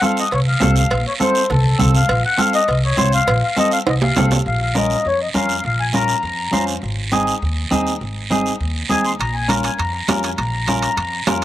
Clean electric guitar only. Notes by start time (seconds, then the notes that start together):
0.02 C4 F4 A4
0.60 C4 F4 A4
1.20 C4 F4 A4
1.79 C4 F4 A4
2.38 C4 F4 A4
2.97 C4 F4 C5
3.57 C4 F4 A4
4.17 C4 F4 A4
4.75 C#4 F4 A#4
5.34 C#4 F4 A#4
5.94 C#4 F4 A#4
6.53 C#4 F4 C5
7.12 C4 D#4 G#4
7.71 C4 D#4 G#4
8.31 C4 D#4 G#4
8.89 C4 D#4 G#4
9.48 C#4 F4 A#4
10.09 C#4 F4 A#4
10.68 C#4 F4 A#4
11.27 C#4 F4 A#4